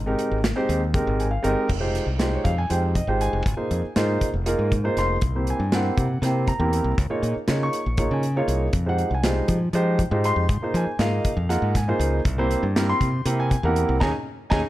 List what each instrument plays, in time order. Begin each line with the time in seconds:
Already playing: fingered electric bass G#1
0.06 grand piano G#3 C4 D#4 G4 A#4
0.19 closed hi-hat
0.31 fingered electric bass G#1
0.44 snare, closed hi-hat
0.56 grand piano G#3 C4 D#4 G4 C5
0.69 fingered electric bass D#2, closed hi-hat
0.94 grand piano G#3 C4 D#4 G4 A#4, kick, closed hi-hat
1.07 fingered electric bass G#1
1.20 grand piano G#5, closed hi-hat
1.31 grand piano F5
1.43 fingered electric bass G1, grand piano G#3 C4 D#4 G4 A#4 D#5, closed hi-hat
1.69 fingered electric bass F1, kick, crash
1.80 grand piano G#3 D#4 F4 G4 C5
1.95 snare, closed hi-hat
2.06 fingered electric bass C2
2.18 grand piano G#3 D#4 F4 G4 C5, snare, closed hi-hat
2.35 grand piano C#5
2.44 fingered electric bass F2, grand piano F5, kick, closed hi-hat
2.58 grand piano G#5
2.70 fingered electric bass F2, grand piano G#3 D#4 F4 G4 C5 G5, closed hi-hat
2.84 grand piano C5
2.95 grand piano D#5, kick, closed hi-hat
3.07 fingered electric bass G#1, grand piano G#3 D#4 F4 G4 C5 G5
3.21 grand piano G#5, closed hi-hat
3.33 fingered electric bass F1
3.46 fingered electric bass G#1, kick, closed hi-hat
3.57 grand piano A#3 D#4 F4 G#4 C5, muted fingered electric bass stroke
3.71 fingered electric bass F2, closed hi-hat
3.84 muted fingered electric bass stroke
3.96 fingered electric bass G#2, grand piano A#3 D#4 F4 G#4 C5, snare, closed hi-hat
4.21 kick, closed hi-hat
4.34 fingered electric bass F1
4.46 grand piano A#3 D#4 F4 G#4 A#4, closed hi-hat
4.59 fingered electric bass G#2
4.72 kick, closed hi-hat
4.84 grand piano A#3 D#4 F4 G#4 C5
4.97 fingered electric bass F1, grand piano C6, snare, closed hi-hat
5.21 fingered electric bass C2, kick, closed hi-hat
5.35 grand piano A#3 C4 E4 G4 C5
5.47 grand piano G#5, closed hi-hat
5.60 fingered electric bass G2
5.72 grand piano A#3 C4 E4 G4 C5 F#5, snare, closed hi-hat
5.97 fingered electric bass C3, kick, closed hi-hat
6.22 fingered electric bass C3, grand piano A#3 C4 E4 G4 C5 G5, snare, closed hi-hat
6.47 grand piano A#5, kick, closed hi-hat
6.59 fingered electric bass E2, grand piano A#3 C4 E4 G4 A#4
6.73 closed hi-hat
6.84 fingered electric bass C2
6.98 fingered electric bass C#2, kick, closed hi-hat
7.10 grand piano A#3 D#4 F4 G#4 C#5
7.23 fingered electric bass A#2, closed hi-hat
7.36 muted fingered electric bass stroke
7.48 fingered electric bass C#3, grand piano A#3 D#4 F4 G#4 C#5, snare, closed hi-hat
7.63 grand piano C#6
7.73 closed hi-hat
7.86 fingered electric bass A#1
7.97 grand piano A#3 D#4 F4 G#4 C#5, kick, closed hi-hat
8.11 fingered electric bass C#3, grand piano G#5
8.23 closed hi-hat
8.36 grand piano A#3 D#4 F4 G#4 C#5 F5
8.48 fingered electric bass C2, closed hi-hat
8.73 fingered electric bass F2, kick, closed hi-hat
8.86 grand piano G#3 D#4 F4 G4 C5 F#5
8.98 closed hi-hat
9.11 fingered electric bass C2, grand piano G#5
9.24 grand piano G3 G#3 D#4 F4 C5, snare, closed hi-hat
9.48 fingered electric bass F3, kick, closed hi-hat
9.73 fingered electric bass F3, grand piano G#3 D#4 F4 G4 C5, closed hi-hat
9.99 kick, closed hi-hat
10.11 fingered electric bass G#2, grand piano G#3 D#4 F4 G4 C5
10.24 grand piano C6, closed hi-hat
10.36 fingered electric bass F2
10.49 fingered electric bass G#2, kick, closed hi-hat
10.61 grand piano A#3 D#4 F4 G#4 C5, muted fingered electric bass stroke
10.74 fingered electric bass F3, grand piano G#5, closed hi-hat
10.87 muted fingered electric bass stroke
10.99 fingered electric bass G#2, grand piano A#3 D#4 F4 G#4 D#5 F5, snare, closed hi-hat
11.25 kick, closed hi-hat
11.37 fingered electric bass F2
11.49 grand piano A#3 D#4 F4 G#4 A#4 F#5, snare, closed hi-hat
11.62 fingered electric bass G#2
11.75 grand piano G#5, kick, snare, closed hi-hat
11.88 grand piano A#3 D#4 F4 G#4 C5
11.99 fingered electric bass C#2, closed hi-hat
12.25 fingered electric bass C2, kick, closed hi-hat
12.38 grand piano A#3 C4 E4 G4 C5
12.51 closed hi-hat
12.63 fingered electric bass G2
12.75 grand piano A#3 C4 E4 G4 A#4, snare, closed hi-hat
12.89 grand piano C6
13.01 fingered electric bass C3, kick, closed hi-hat
13.25 fingered electric bass C3, grand piano A#3 C4 E4 G4 A#4, closed hi-hat
13.40 grand piano G#5
13.51 kick, closed hi-hat
13.63 fingered electric bass E2, grand piano A#3 C4 E4 G4 A#4 F#5
13.76 closed hi-hat
13.89 fingered electric bass C2
14.00 fingered electric bass D#2, grand piano C#4 D#4 G#4 D#5 G#5 A#5, kick, snare
14.50 fingered electric bass D#2, grand piano C#4 D#4 G#4 D#5 G#5 A#5, kick, snare